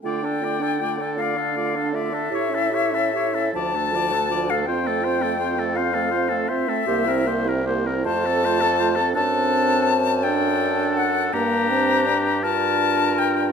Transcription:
X:1
M:6/8
L:1/16
Q:3/8=54
K:Dm
V:1 name="Flute"
g6 f4 e2- | e6 a4- a f | g6 f4 e2- | e4- e z a6 |
[K:Gm] a6 g4 ^f2 | b6 a4 g2 |]
V:2 name="Oboe"
d A d A d A d A d A d A | ^c A c A c A d A d A d A | c A c A c A c A c A c A | c B c B c B c A c A c A |
[K:Gm] A6 A6 | G6 B6 |]
V:3 name="Clarinet"
F D F D F D F D F D F D | G E G E G E F D F D F D | F C F C F C F C F C F C | G E G E G E F A F A F A |
[K:Gm] D6 D6 | D6 F6 |]
V:4 name="French horn"
A, D A, D A, D A, D A, D A, D | E ^C E C E C F, A, F, A, F, A, | C A, C A, C A, C A, C A, C A, | B, C B, C B, C A, C A, C A, C |
[K:Gm] C6 D6 | B,2 C2 D2 D6 |]
V:5 name="Bassoon" clef=bass
D,12 | A,,6 D,,6 | F,,8- F,,2 z2 | C,,6 F,,6 |
[K:Gm] ^F,,12 | G,,12 |]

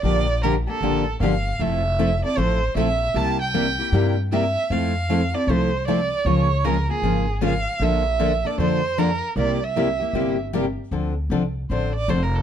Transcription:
X:1
M:4/4
L:1/8
Q:"Swing" 1/4=154
K:F
V:1 name="Violin"
d2 B A3 f2 | e3 d c2 e2 | a g4 z e2 | f3 d c2 d2 |
_d2 B _A3 f2 | e3 d c2 B2 | d e4 z3 | [K:Dm] z4 c d (3c B A |]
V:2 name="Steel-string acoustic guitar"
[D,F,B,DG] z [D,F,B,DG] [B,DG] [D,F,B,DG] z [D,F,B,DG] z | [F,A,CEA] z [F,A,CEA] [CEA] [F,A,CEA] z [F,A,CEA] z | [C,G,B,EG] z [C,G,B,EG] [B,EG] [C,G,B,EG] z [C,G,B,EG] z | [F,A,CEA] z [F,A,CEA] [CEA] [F,A,CEA] z [F,A,CEA] z |
[_D,F,B,F_A] z [D,F,B,FA] [B,FA] [D,F,B,FA] z [D,F,B,FA] z | [D,F,B,DA] z [D,F,B,DA] [B,DA] [D,F,B,DA] z [D,F,B,DA] z | [C,G,B,EG] z [C,G,B,EG] [B,EG] [C,G,B,EG] z [C,G,B,EG] z | [K:Dm] [D,F,CDA] z [D,F,CDA] z [D,F,CDA] z [D,F,CDA] z |]
V:3 name="Steel-string acoustic guitar"
[D,F,B,DG] z [D,F,B,DG] z [D,F,B,DG] z [D,F,B,DG] z | [F,CEA] z [F,CEA] z [F,CEA] z [F,CEA] z | [C,G,B,EG] z [C,G,B,EG] z [C,G,B,EG] z [C,G,B,EG] z | [F,CEA] z [F,CEA] z [F,CEA] z [F,CEA] z |
[_D,F,_A,_DFB] z [D,F,A,DFB] z [D,F,A,DFB] z [D,F,A,DFB] z | [D,F,B,DA] z [D,F,B,DA] z [D,F,B,DA] z [D,F,B,DA] z | [C,G,B,EG] z [C,G,B,EG] z [C,G,B,EG] z [C,G,B,EG] z | [K:Dm] z8 |]
V:4 name="Upright bass" clef=bass
B,,,4 A,,,2 G,,,2 | F,,,4 A,,,2 B,,,2 | C,,4 G,,4 | F,,4 C,,4 |
_D,,4 _A,,,4 | B,,,4 F,,4 | C,,4 G,,,4 | [K:Dm] D,,2 C,,2 A,,,2 F,,,2 |]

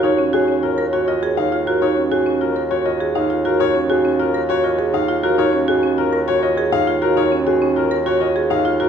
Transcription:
X:1
M:3/4
L:1/16
Q:1/4=101
K:Ebm
V:1 name="French horn"
d8- d3 z | z12 | z12 | z12 |
z12 |]
V:2 name="Grand piano"
d z A z B z d e z f z B | d z A z B z d e z f z B | d z A z B z d e z f z B | d z A z B z d e z f z B |
d z A z B z d e z f z B |]
V:3 name="Marimba"
E D G D F B G F A E F G | E D G D F B G F A E F G | E D G D F B G F A E F G | E D G D F B G F A E F G |
E D G D F B G F A E F G |]
V:4 name="Bassoon" clef=bass
E,,12- | E,,12- | E,,12- | E,,12- |
E,,12 |]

